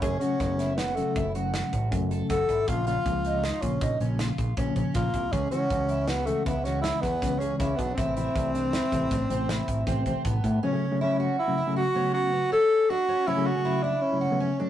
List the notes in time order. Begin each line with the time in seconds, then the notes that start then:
0.01 F#1 C#3 F#3 A3 C#4 G#4, kick, closed hi-hat
0.19 C#3 F#3 A3 C#4 F#4, closed hi-hat
0.40 F#1 C#3 F#3 A3 B3, kick, snare, closed hi-hat
0.59 E4, snare, closed hi-hat
0.76 B3 F#4, snare, closed hi-hat
0.95 C#3 F#3 A3 C#4, closed hi-hat
1.16 F#1 E4, kick, closed hi-hat
1.35 C#3 F#3 A3 C#4 F#4, closed hi-hat
1.54 F#4, snare, closed hi-hat
1.73 A1, kick, closed hi-hat
1.91 F#1 C#3 F#3 A3 C#4, kick, closed hi-hat
2.11 A4, closed hi-hat
2.30 F#1 F#4 A4, kick, snare, closed hi-hat
2.49 G#1 E4, kick, closed hi-hat
2.68 A#1 C#3 F3 A#3 C#4 F4, kick, closed hi-hat
2.87 C#3 F3 A#3 C#4 F4, closed hi-hat
3.05 C#2 C#3 F3 A#3 C#4, kick, closed hi-hat
3.24 D#4, closed hi-hat
3.44 D#4 F4, snare, closed hi-hat
3.62 A#1 C#3 F3 A#3 C#4, kick, closed hi-hat
3.81 A#1 D#4, kick, closed hi-hat
4.00 A#1 C#3 F3 A#3 C#4, closed hi-hat
4.19 F4, snare, closed hi-hat
4.38 A#1, kick, closed hi-hat
4.57 A#1 C#3 F3 A#3 C#4, kick, closed hi-hat
4.76 A#1 C#4, kick, closed hi-hat
4.94 A#1 A#3 F4, kick, snare, closed hi-hat
5.14 C2, kick, closed hi-hat
5.32 C#2 C#3 E3 G#3 C#4 G#4, kick, closed hi-hat
5.51 C#3 E3 G#3 C#4 E4 F#4, closed hi-hat
5.70 C#2 C#3 E3 G#3 C#4, kick, closed hi-hat
5.89 E4, closed hi-hat
6.08 B3 F#4, snare, closed hi-hat
6.26 C#3 E3 G#3 A3 C#4, closed hi-hat
6.45 C#2 B3 E4, kick, closed hi-hat
6.64 C#3 E3 G#3 C#4 F#4, snare, closed hi-hat
6.81 E4, snare, closed hi-hat
7.01 E2 B3, kick, snare, closed hi-hat
7.22 C#2 C#3 E3 G#3 C#4, kick, snare, closed hi-hat
7.39 C#4 G#4, closed hi-hat
7.58 C#2 C#4 E4, kick, snare, closed hi-hat
7.76 B1 B3 D4, kick, closed hi-hat
7.94 A1 C3 E3 A3 C4 E4, kick, closed hi-hat
8.17 C3 E3 A3 C4 E4, closed hi-hat
8.35 C2 C3 E3 A3 C4, kick, closed hi-hat
8.55 D4, closed hi-hat
8.73 E4, snare, closed hi-hat
8.92 A1 C3 E3 A3 C4, kick, snare, closed hi-hat
9.11 A1 D4, kick, snare, closed hi-hat
9.30 A1 C3 E3 A3 C4, closed hi-hat
9.49 E4, snare, closed hi-hat
9.68 A1 C5, kick, closed hi-hat
9.87 A1 C3 E3 A3 C4 E5, kick, snare, closed hi-hat
10.06 A1 C4, kick, closed hi-hat
10.24 A1 B3 A5, kick, closed hi-hat
10.44 A2, kick, closed hi-hat
10.63 C#3 F#3 A3 C#4
10.72 C#3 F#3 A3 C#4
10.92 C#3 F#3 A3 C#4
11.01 C#4 E4
11.20 F#4
11.39 E4
11.48 C#3 F#3 A3 C#4
11.58 E4
11.67 C#3 F#3 A3 C#4
11.76 F#4
11.95 C#3 F#3 A3 B3 C#4
12.13 F#4
12.33 B3
12.52 C#4 A4
12.90 D4 F#4
13.08 C#4
13.27 C#3 F#3 A3 C#4 E4
13.37 C#3 F#3 A3 C#4
13.46 F#4
13.56 C#3 F#3 A3 C#4
13.65 E4
13.83 D4 E4
14.02 C#4
14.12 C#3 F#3 A3 E4
14.21 F#4
14.31 C#3 F#3 A3 B3
14.40 C#4
14.59 F#3 A3 C#4 D4